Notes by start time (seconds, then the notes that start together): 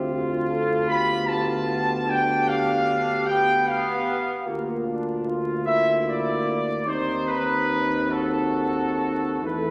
Already playing: D2 C4 F4 G4
0.11 F4
0.49 A4
0.88 B3 G4 B5
1.27 A5
2.08 D4 G5
2.48 F5
3.25 B3 G5
3.67 F5
4.46 D2 A#3 F4
4.87 D4
5.28 F4
5.65 A#3 E4 E5
6.08 D5
6.85 D#2 C4 D#4 C5
7.27 B4
8.10 F#4 A4
9.41 E2 A3 E4 A4 B4